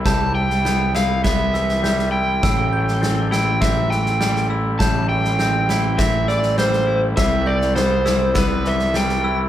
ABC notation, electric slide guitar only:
X:1
M:4/4
L:1/16
Q:1/4=101
K:Am
V:1 name="Electric slide guitar"
a2 g4 f2 e6 g2- | g6 g2 e2 g4 z2 | a2 g6 e2 d2 c3 z | e2 d2 c4 B2 e2 g3 z |]